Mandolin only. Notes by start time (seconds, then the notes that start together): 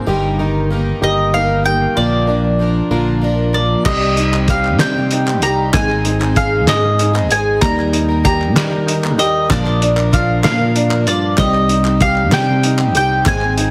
1.04 D#5
1.34 F5
1.66 G5
1.97 D5
3.54 D5
3.85 D#5
4.50 F5
4.80 G5
5.43 A#5
5.74 G#5
6.37 F5
6.68 D#5
7.32 G#5
7.61 A#5
8.25 A#5
9.19 D#5
9.52 D5
10.14 F5
10.44 F5
11.08 D5
11.39 D#5
12.02 F5
12.34 G5
12.97 G5
13.28 G#5